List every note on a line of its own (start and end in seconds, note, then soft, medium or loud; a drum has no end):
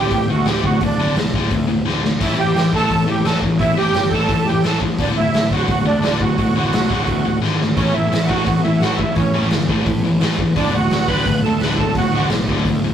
0.00 0.10 D2 medium
0.00 0.11 A2 loud
0.00 0.11 D3 loud
0.00 0.26 G4 medium
0.00 0.30 G5 loud
0.10 0.27 D1 medium
0.10 0.28 D2 medium
0.10 0.28 A2 medium
0.10 kick loud
0.10 open hi-hat soft
0.29 0.44 D2 medium
0.29 0.45 D2 medium
0.29 0.45 A2 medium
0.29 0.46 F#4 medium
0.29 0.47 F#5 medium
0.45 0.62 D1 medium
0.45 0.63 D2 medium
0.45 0.63 A2 medium
0.45 0.63 D3 loud
0.45 0.63 G4 medium
0.45 0.65 G5 medium
0.45 snare medium
0.45 open hi-hat soft
0.64 0.79 D1 medium
0.64 0.80 D2 medium
0.64 0.80 A2 medium
0.64 0.80 F#4 medium
0.64 0.82 F#5 medium
0.64 kick medium
0.81 0.97 D1 medium
0.81 0.98 D2 medium
0.81 0.98 A2 medium
0.81 1.15 D4 medium
0.81 kick loud
0.81 open hi-hat medium
0.85 1.16 D5 medium
0.98 1.14 D1 medium
0.98 1.16 D2 medium
0.98 1.16 A2 medium
0.98 1.16 D3 loud
1.15 1.31 B1 medium
1.15 1.33 D2 medium
1.15 1.33 A2 medium
1.15 snare loud
1.15 open hi-hat medium
1.33 1.49 D1 medium
1.33 1.51 D2 medium
1.33 1.51 A2 medium
1.33 1.51 D3 loud
1.33 kick medium
1.51 1.66 D2 medium
1.51 1.67 A2 medium
1.51 kick loud
1.51 open hi-hat medium
1.67 1.83 D1 medium
1.67 1.83 D2 medium
1.67 1.84 A2 medium
1.84 2.15 D1 medium
1.84 2.00 D2 medium
1.84 2.01 A2 medium
1.84 2.02 D3 loud
1.84 snare medium
2.01 2.18 D2 medium
2.01 2.18 A2 medium
2.01 snare medium
2.20 2.36 A1 medium
2.20 2.36 A2 medium
2.20 2.37 E3 medium
2.20 2.37 A3 loud
2.20 2.38 E4 medium
2.20 2.40 E5 loud
2.20 kick loud
2.20 open hi-hat medium
2.20 crash medium
2.37 2.52 A1 medium
2.37 2.53 A2 soft
2.37 2.53 E3 medium
2.37 2.71 G4 medium
2.37 2.74 G5 loud
2.54 2.84 A1 medium
2.54 2.71 A2 medium
2.54 2.71 E3 medium
2.54 snare loud
2.54 open hi-hat medium
2.73 2.87 A2 medium
2.73 2.88 E3 medium
2.73 2.90 A3 loud
2.73 3.06 A4 medium
2.73 3.10 A5 loud
2.73 kick medium
2.88 3.05 A1 medium
2.88 3.05 A2 medium
2.88 3.05 E3 medium
2.88 kick medium
2.88 open hi-hat medium
3.06 3.22 A2 medium
3.06 3.23 A2 medium
3.06 3.24 E3 medium
3.06 3.24 G4 medium
3.06 3.26 G5 medium
3.24 3.39 A1 medium
3.24 3.41 A2 medium
3.24 3.41 E3 medium
3.24 3.42 A3 loud
3.24 3.40 A4 medium
3.24 3.42 A5 medium
3.24 snare loud
3.24 open hi-hat medium
3.42 3.57 A1 medium
3.42 3.58 A2 medium
3.42 3.59 E3 medium
3.42 kick medium
3.58 3.75 A1 medium
3.58 3.76 A2 medium
3.58 3.75 E4 medium
3.58 3.77 E5 loud
3.58 kick loud
3.58 open hi-hat medium
3.62 3.76 E3 medium
3.77 3.92 A1 medium
3.77 3.93 A2 medium
3.77 3.94 E3 medium
3.77 3.94 A3 medium
3.77 4.09 G4 medium
3.77 4.14 G5 loud
3.94 4.09 G1 medium
3.94 4.11 A2 medium
3.94 4.11 E3 medium
3.94 snare loud
3.94 open hi-hat medium
4.10 4.27 A1 medium
4.10 4.43 A4 medium
4.10 4.48 A5 loud
4.10 kick medium
4.14 4.29 A2 medium
4.14 4.29 E3 medium
4.14 4.30 A3 medium
4.29 4.44 A2 medium
4.29 4.46 A2 medium
4.29 4.46 E3 medium
4.29 kick loud
4.29 open hi-hat medium
4.45 4.62 A1 medium
4.45 4.62 G4 medium
4.45 4.65 G5 loud
4.49 4.63 A2 medium
4.49 4.64 E3 medium
4.62 4.95 A1 medium
4.62 4.81 A2 medium
4.62 4.81 E3 medium
4.62 4.81 A3 loud
4.62 4.79 A4 medium
4.62 4.81 A5 medium
4.62 snare loud
4.62 open hi-hat medium
4.81 4.98 A2 medium
4.81 4.98 E3 medium
4.81 kick medium
4.99 5.14 D1 medium
4.99 5.15 D2 medium
4.99 5.15 A2 medium
4.99 5.16 D3 medium
4.99 5.07 D4 medium
4.99 5.09 D5 medium
4.99 kick loud
4.99 open hi-hat medium
5.16 5.32 D1 medium
5.16 5.32 D2 medium
5.16 5.32 A2 medium
5.16 5.48 E4 medium
5.16 5.53 E5 loud
5.34 5.64 D1 loud
5.34 5.50 D2 medium
5.34 5.50 A2 medium
5.34 snare loud
5.34 open hi-hat medium
5.51 5.68 D2 medium
5.51 5.69 A2 loud
5.51 5.69 D3 loud
5.51 5.66 F#4 medium
5.51 5.69 F#5 medium
5.51 kick medium
5.68 5.83 D1 medium
5.68 5.84 D2 medium
5.68 5.85 A2 medium
5.68 5.84 F#4 medium
5.68 5.85 F#5 loud
5.68 kick loud
5.68 open hi-hat soft
5.85 6.00 D2 medium
5.85 6.01 D2 medium
5.85 6.01 A2 medium
5.85 6.17 D4 medium
5.85 6.22 D5 medium
6.02 6.18 D1 medium
6.02 6.19 D2 medium
6.02 6.20 A2 loud
6.02 6.20 D3 medium
6.02 snare loud
6.02 open hi-hat soft
6.20 6.36 D1 medium
6.20 6.37 D2 medium
6.20 6.37 A2 medium
6.20 7.38 F#4 medium
6.20 7.39 F#5 medium
6.20 kick medium
6.38 6.53 D1 medium
6.38 6.54 D2 medium
6.38 6.54 A2 medium
6.38 kick loud
6.38 open hi-hat medium
6.56 6.71 D1 medium
6.56 6.72 D2 medium
6.56 6.72 A2 medium
6.56 6.72 D3 medium
6.73 6.88 B1 medium
6.73 6.88 D2 medium
6.73 6.89 A2 medium
6.73 snare loud
6.73 open hi-hat medium
6.89 7.05 D1 medium
6.89 7.06 D2 medium
6.89 7.06 A2 medium
6.89 7.07 D3 medium
6.89 kick medium
7.07 7.23 D2 medium
7.07 7.23 A2 medium
7.07 kick loud
7.07 open hi-hat medium
7.25 7.40 D1 medium
7.25 7.41 D2 medium
7.25 7.41 A2 medium
7.42 7.72 G#1 medium
7.42 7.58 D2 medium
7.42 7.59 A2 medium
7.42 7.59 D3 loud
7.42 snare medium
7.60 7.75 D2 medium
7.60 7.76 A2 medium
7.60 snare medium
7.76 7.92 A1 medium
7.76 7.94 A2 medium
7.76 7.94 E3 medium
7.76 7.94 A3 medium
7.76 7.94 C#4 medium
7.76 7.94 C#5 medium
7.76 kick loud
7.76 open hi-hat medium
7.93 8.10 A1 medium
7.93 8.11 A2 medium
7.93 8.11 E3 medium
7.93 8.27 E4 medium
7.93 8.30 E5 loud
8.12 8.42 A1 medium
8.12 8.27 A2 medium
8.12 8.28 E3 medium
8.12 snare loud
8.12 open hi-hat medium
8.23 8.62 F#5 loud
8.28 8.45 A2 medium
8.28 8.45 E3 medium
8.28 8.46 A3 loud
8.28 8.61 F#4 medium
8.28 kick medium
8.46 8.62 A1 medium
8.46 8.62 A2 medium
8.46 8.63 E3 medium
8.46 kick loud
8.46 open hi-hat medium
8.62 8.80 A2 medium
8.62 8.80 E3 medium
8.62 8.81 E4 medium
8.62 8.81 E5 loud
8.77 8.98 F#5 medium
8.77 open hi-hat soft
8.82 8.97 A1 medium
8.82 8.98 A2 loud
8.82 8.98 E3 loud
8.82 8.99 A3 loud
8.82 8.98 F#4 medium
8.82 snare loud
8.95 9.15 E5 medium
8.95 kick medium
8.99 9.14 A1 medium
8.99 9.15 A2 medium
8.99 9.15 E3 medium
8.99 9.15 E4 medium
9.14 9.32 A1 medium
9.14 9.32 A2 medium
9.14 9.33 E3 medium
9.14 9.49 C#4 medium
9.14 9.48 C#5 medium
9.14 kick medium
9.14 open hi-hat soft
9.34 9.50 A1 medium
9.34 9.50 A2 medium
9.34 9.51 E3 medium
9.34 9.51 A3 loud
9.50 9.67 G1 loud
9.50 9.67 A2 medium
9.50 9.67 E3 medium
9.50 snare loud
9.50 open hi-hat medium
9.69 9.84 A1 loud
9.69 9.85 A2 medium
9.69 9.86 E3 loud
9.69 9.86 A3 medium
9.69 kick medium
9.86 10.01 A2 medium
9.86 10.02 A2 medium
9.86 10.02 E3 medium
9.86 kick loud
9.86 open hi-hat medium
10.03 10.19 A1 medium
10.03 10.20 A2 medium
10.03 10.20 E3 medium
10.20 10.51 A1 medium
10.20 10.38 A2 medium
10.20 10.38 E3 medium
10.20 10.38 A3 loud
10.20 snare loud
10.20 open hi-hat medium
10.39 10.55 A2 medium
10.39 10.56 E3 medium
10.39 kick medium
10.56 10.71 D1 medium
10.56 10.73 D2 medium
10.56 10.73 A2 medium
10.56 10.73 D3 loud
10.56 10.73 D4 medium
10.56 10.75 D5 loud
10.56 kick loud
10.56 open hi-hat medium
10.72 10.88 D1 medium
10.72 10.90 D2 medium
10.72 10.90 A2 medium
10.72 11.07 F#4 medium
10.72 11.10 F#5 loud
10.90 11.21 D1 loud
10.90 11.07 D2 medium
10.90 11.08 A2 medium
10.90 snare loud
10.90 open hi-hat medium
11.07 11.25 D2 medium
11.07 11.25 A2 medium
11.07 11.25 D3 loud
11.07 11.41 B4 medium
11.07 11.41 B5 loud
11.07 kick medium
11.26 11.41 D1 medium
11.26 11.42 D2 medium
11.26 11.42 A2 medium
11.26 kick loud
11.26 open hi-hat medium
11.43 11.59 D2 loud
11.43 11.61 D2 medium
11.43 11.61 A2 medium
11.43 11.60 A4 medium
11.43 11.61 A5 medium
11.59 11.76 D1 medium
11.59 11.75 D2 medium
11.59 11.75 A2 medium
11.59 11.77 D3 medium
11.59 11.77 B4 medium
11.59 11.79 B5 medium
11.59 snare loud
11.59 open hi-hat medium
11.64 11.79 D2 medium
11.64 11.79 A2 loud
11.64 11.80 D3 medium
11.76 11.94 D1 medium
11.76 11.93 D2 medium
11.76 11.93 A2 medium
11.76 11.94 A4 medium
11.76 11.97 A5 medium
11.76 kick medium
11.80 11.95 D2 medium
11.80 11.95 A2 medium
11.94 12.10 D1 medium
11.94 12.10 D2 medium
11.94 12.11 A2 medium
11.94 12.29 F#4 medium
11.94 12.29 F#5 loud
11.94 kick loud
11.94 open hi-hat medium
11.99 12.13 D2 medium
11.99 12.13 A2 medium
12.11 12.28 D1 medium
12.15 12.31 D2 medium
12.15 12.31 A2 medium
12.15 12.31 D3 loud
12.29 12.45 B1 medium
12.29 snare loud
12.29 open hi-hat medium
12.33 12.48 D2 medium
12.33 12.48 A2 medium
12.48 12.64 D1 medium
12.48 12.65 D2 medium
12.48 12.66 A2 medium
12.48 12.66 D3 medium
12.48 kick medium
12.65 12.80 D2 medium
12.65 12.82 D2 medium
12.65 12.83 A2 medium
12.65 kick medium
12.65 open hi-hat medium
12.81 12.94 D1 medium
12.81 12.94 D2 medium
12.81 12.94 A2 medium